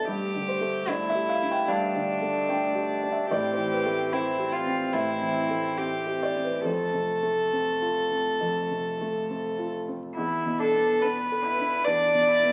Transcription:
0.07 1.65 G2 medium
0.07 3.32 A3 medium
0.07 0.89 G4 medium
0.34 0.78 D3 medium
0.48 0.86 C5 medium
0.60 1.04 A3 medium
0.87 1.31 D4 medium
0.87 1.70 E4 loud
0.87 1.08 D5 medium
1.09 1.28 E5 loud
1.15 1.58 G4 medium
1.29 1.47 F5 medium
1.42 1.84 D4 medium
1.51 1.69 G5 loud
1.68 3.26 G2 medium
1.68 3.30 D4 medium
1.68 2.45 F5 loud
1.95 2.38 D3 medium
2.21 2.65 A3 medium
2.49 2.92 D4 medium
2.49 3.07 G5 medium
2.75 3.19 G4 medium
3.03 3.31 D4 medium
3.12 3.30 E5 medium
3.30 4.90 A2 medium
3.30 6.65 C4 medium
3.30 4.14 G4 medium
3.30 3.50 D5 loud
3.53 3.71 C5 medium
3.57 4.02 E3 medium
3.73 4.11 B4 medium
3.85 4.29 A3 medium
4.12 4.56 C4 medium
4.12 4.54 E4 medium
4.12 4.91 C5 medium
4.39 4.83 G4 medium
4.53 4.95 F4 medium
4.66 5.10 C4 medium
4.93 6.61 A2 medium
4.93 5.79 E4 medium
4.93 6.18 E5 medium
5.21 5.67 E3 medium
5.49 5.95 A3 medium
5.78 6.24 C4 medium
5.78 6.64 G4 medium
6.06 6.53 G4 medium
6.23 6.42 D5 medium
6.35 6.65 C4 medium
6.44 6.64 B4 medium
6.64 8.37 F2 medium
6.64 9.93 A3 medium
6.64 9.70 A4 medium
6.64 9.70 C5 medium
6.93 7.40 C3 medium
7.22 7.70 A3 medium
7.52 7.99 C4 medium
7.81 8.29 F4 medium
8.11 8.59 C4 medium
8.40 10.13 F2 medium
8.70 9.18 C3 medium
9.00 9.47 A3 medium
9.29 9.77 C4 medium
9.58 10.05 F4 medium
9.88 10.17 C4 soft
10.17 11.82 E2 medium
10.17 10.61 E4 medium
10.46 10.91 B2 medium
10.59 11.03 D4 medium
10.59 11.04 A4 medium
10.74 11.19 B3 medium
11.02 11.46 B3 medium
11.02 11.47 D4 medium
11.02 11.87 B4 loud
11.31 11.76 A4 medium
11.44 11.88 E4 medium
11.59 12.03 D4 medium
11.85 12.52 E2 medium
11.85 12.29 D4 medium
11.85 12.52 D5 loud
12.14 12.52 B2 medium
12.28 12.52 E4 medium
12.42 12.52 B3 medium

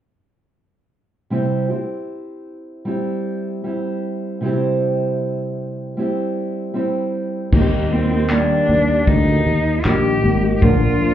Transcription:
1.30 1.69 C3 medium
1.30 1.70 G3 medium
1.30 1.70 C4 medium
1.30 1.70 E4 medium
1.30 1.68 G4 medium
1.69 2.85 C4 soft
1.69 2.86 E4 soft
1.69 2.88 G4 soft
2.85 3.63 G3 medium
2.85 3.64 C4 medium
2.85 3.65 E4 medium
2.85 3.67 G4 medium
3.64 4.42 G3 medium
3.64 4.42 C4 soft
3.64 4.43 E4 medium
3.64 4.45 G4 medium
4.41 5.97 C3 medium
4.41 5.96 G3 medium
4.41 5.97 C4 medium
4.41 5.98 E4 medium
4.46 6.00 G4 medium
5.97 6.73 G3 medium
5.97 6.74 C4 medium
5.97 6.75 E4 medium
5.97 6.76 G4 medium
6.74 7.53 G3 medium
6.74 7.53 C4 medium
6.74 7.53 E4 medium
6.74 7.54 G4 medium
7.52 8.45 D#2 medium
7.52 7.91 D#3 medium
7.52 7.89 G3 medium
7.52 7.63 A#3 medium
7.52 7.91 A#3 medium
7.52 7.92 D#4 medium
7.52 7.92 G4 medium
7.52 kick loud
7.52 crash medium
7.61 7.69 C4 medium
7.67 7.94 A#3 medium
7.91 8.10 G3 medium
7.91 8.11 A#3 medium
7.91 8.32 C4 medium
7.91 8.11 D#4 medium
7.91 8.09 G4 medium
8.10 8.30 A#3 soft
8.10 8.31 D#4 soft
8.10 8.30 G4 soft
8.30 8.69 D#3 medium
8.30 8.66 G3 medium
8.30 8.68 A#3 medium
8.30 9.09 D4 medium
8.30 8.70 G4 medium
8.30 clap loud
8.67 9.01 D#2 medium
8.67 9.26 G3 medium
8.67 9.27 A#3 medium
8.67 9.25 G4 medium
9.07 9.39 D2 medium
9.07 9.86 D#4 loud
9.07 kick loud
9.26 9.84 A#3 soft
9.26 9.84 D#4 soft
9.26 9.84 G4 soft
9.46 9.78 D#2 medium
9.84 10.17 A#1 medium
9.84 10.23 D#3 medium
9.84 10.21 G3 medium
9.84 10.22 A#3 medium
9.84 10.24 D#4 medium
9.84 10.55 G4 loud
9.84 10.24 G4 medium
9.84 clap loud
10.22 10.55 G#1 medium
10.22 10.42 G3 medium
10.22 10.43 A#3 medium
10.22 10.43 D#4 medium
10.22 10.41 G4 medium
10.42 10.62 A#3 soft
10.42 10.63 D#4 soft
10.42 10.62 G4 soft
10.56 10.63 G4 medium
10.62 11.14 A#1 loud
10.62 10.81 A#2 medium
10.62 10.81 D3 medium
10.62 10.82 F3 medium
10.62 10.82 A#3 medium
10.62 10.81 D4 medium
10.62 11.14 F4 loud
10.62 10.80 A#4 medium
10.62 kick loud
10.81 10.99 F3 soft
10.81 11.01 A#3 soft
10.81 11.01 D4 soft
10.81 11.00 A#4 soft
11.00 11.14 F3 medium
11.00 11.14 A#3 medium
11.00 11.14 D4 medium
11.00 11.14 A#4 medium

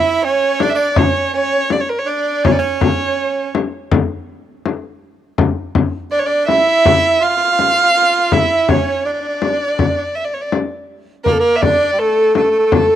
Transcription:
0.00 0.26 E4 medium
0.00 0.24 E5 medium
0.24 0.61 C#4 medium
0.24 0.64 C#5 medium
0.60 0.74 D4 medium
0.60 0.71 D5 medium
0.60 frame drum medium
0.69 0.77 E5 medium
0.75 0.90 D4 medium
0.75 1.01 D5 medium
0.90 0.98 D4 medium
0.96 1.33 C#4 medium
0.96 1.35 C#5 medium
0.96 frame drum medium
1.34 1.68 C#4 medium
1.34 1.74 C#5 medium
1.70 1.82 D5 medium
1.70 frame drum medium
1.80 1.91 C#5 medium
1.89 2.00 A#4 medium
1.99 2.10 C#5 medium
2.06 2.45 D4 medium
2.06 2.48 D5 medium
2.44 2.58 C#4 medium
2.44 2.53 C#5 medium
2.44 frame drum medium
2.52 2.61 D5 medium
2.59 3.50 C#4 medium
2.59 3.55 C#5 medium
2.81 frame drum medium
3.55 frame drum medium
3.92 frame drum medium
4.66 frame drum medium
5.38 frame drum medium
5.75 frame drum medium
6.11 6.25 D4 medium
6.11 6.20 D5 medium
6.19 6.28 C#5 medium
6.26 6.50 D4 medium
6.26 6.47 D5 medium
6.47 7.20 E4 medium
6.47 7.24 E5 loud
6.47 frame drum medium
6.85 frame drum medium
7.21 7.28 F4 medium
7.21 8.34 F5 loud
7.30 7.36 F4 medium
7.36 7.44 F4 medium
7.44 7.51 F4 medium
7.52 7.59 F4 medium
7.59 7.67 F4 medium
7.59 frame drum soft
7.69 7.75 F4 medium
7.75 7.82 F4 soft
7.82 7.89 F4 medium
7.97 8.34 F4 medium
8.32 8.71 E4 medium
8.32 8.71 E5 medium
8.32 frame drum medium
8.69 9.05 C#4 medium
8.69 9.07 C#5 medium
8.69 frame drum medium
9.06 9.12 D4 medium
9.06 10.17 D5 medium
9.14 9.20 D4 soft
9.21 9.28 D4 soft
9.29 9.35 D4 soft
9.36 9.43 D4 soft
9.42 9.50 D4 soft
9.42 frame drum medium
9.52 9.58 D4 soft
9.60 9.66 D4 soft
9.67 9.73 D4 soft
9.74 9.80 D4 soft
9.79 9.88 D4 soft
9.79 frame drum medium
9.88 9.95 D4 soft
9.97 10.03 D4 soft
10.15 10.26 E5 medium
10.24 10.35 D5 medium
10.34 10.43 C#5 medium
10.41 10.51 D5 medium
10.52 frame drum medium
11.24 11.39 A#3 medium
11.24 11.33 A#4 medium
11.24 frame drum medium
11.31 11.41 A4 medium
11.39 11.65 A#3 medium
11.39 11.57 A#4 medium
11.56 11.63 E5 medium
11.62 11.92 D4 medium
11.62 12.00 D5 medium
11.62 frame drum medium
11.93 12.01 G3 soft
11.99 12.35 A3 medium
11.99 12.36 A4 medium
12.35 12.43 A3 medium
12.35 12.96 A4 medium
12.35 frame drum medium
12.43 12.50 A3 soft
12.51 12.58 A3 medium
12.59 12.66 A3 soft
12.66 12.73 A3 medium
12.72 12.81 A3 soft
12.72 frame drum medium
12.82 12.88 A3 soft
12.89 12.96 A3 soft

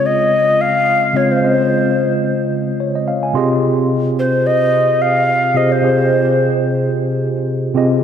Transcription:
0.00 0.10 C#3 medium
0.00 0.11 G#3 medium
0.00 0.11 C4 medium
0.00 0.12 F4 medium
0.00 0.15 D#5 medium
0.06 0.63 D#5 loud
0.61 1.18 F5 loud
1.13 1.37 C#3 medium
1.13 1.37 G#3 medium
1.13 1.38 C4 medium
1.13 1.38 F4 medium
1.13 1.33 C#5 medium
1.13 1.39 D#5 medium
1.31 2.13 C5 medium
1.41 2.30 C#3 medium
1.41 2.31 G#3 medium
1.41 2.31 C4 medium
1.41 2.32 F4 medium
1.41 2.32 D#5 medium
2.80 2.94 C#5 medium
2.95 3.07 D#5 medium
3.08 3.22 F5 medium
3.23 3.34 G#5 medium
3.34 4.23 C3 medium
3.34 4.23 C4 medium
3.34 4.24 F4 medium
3.34 4.24 G4 medium
3.34 4.24 G#4 medium
3.34 4.25 D#5 loud
3.34 3.61 C6 medium
4.19 4.48 C5 medium
4.46 5.03 D#5 loud
5.02 5.58 F5 loud
5.54 5.77 C3 medium
5.54 5.78 C4 medium
5.54 5.78 F4 medium
5.54 5.78 G4 medium
5.54 5.79 G#4 medium
5.54 5.79 C5 medium
5.54 5.73 D#5 medium
5.72 6.54 C5 medium
5.81 6.71 C3 medium
5.81 6.71 C4 medium
5.81 6.72 F4 medium
5.81 6.72 G4 medium
5.81 6.72 G#4 medium
5.81 6.73 D#5 medium
7.74 7.97 C3 medium
7.74 7.98 C4 medium
7.74 7.98 F4 medium
7.74 7.98 G4 medium
7.74 7.99 G#4 medium
7.74 7.99 D#5 loud

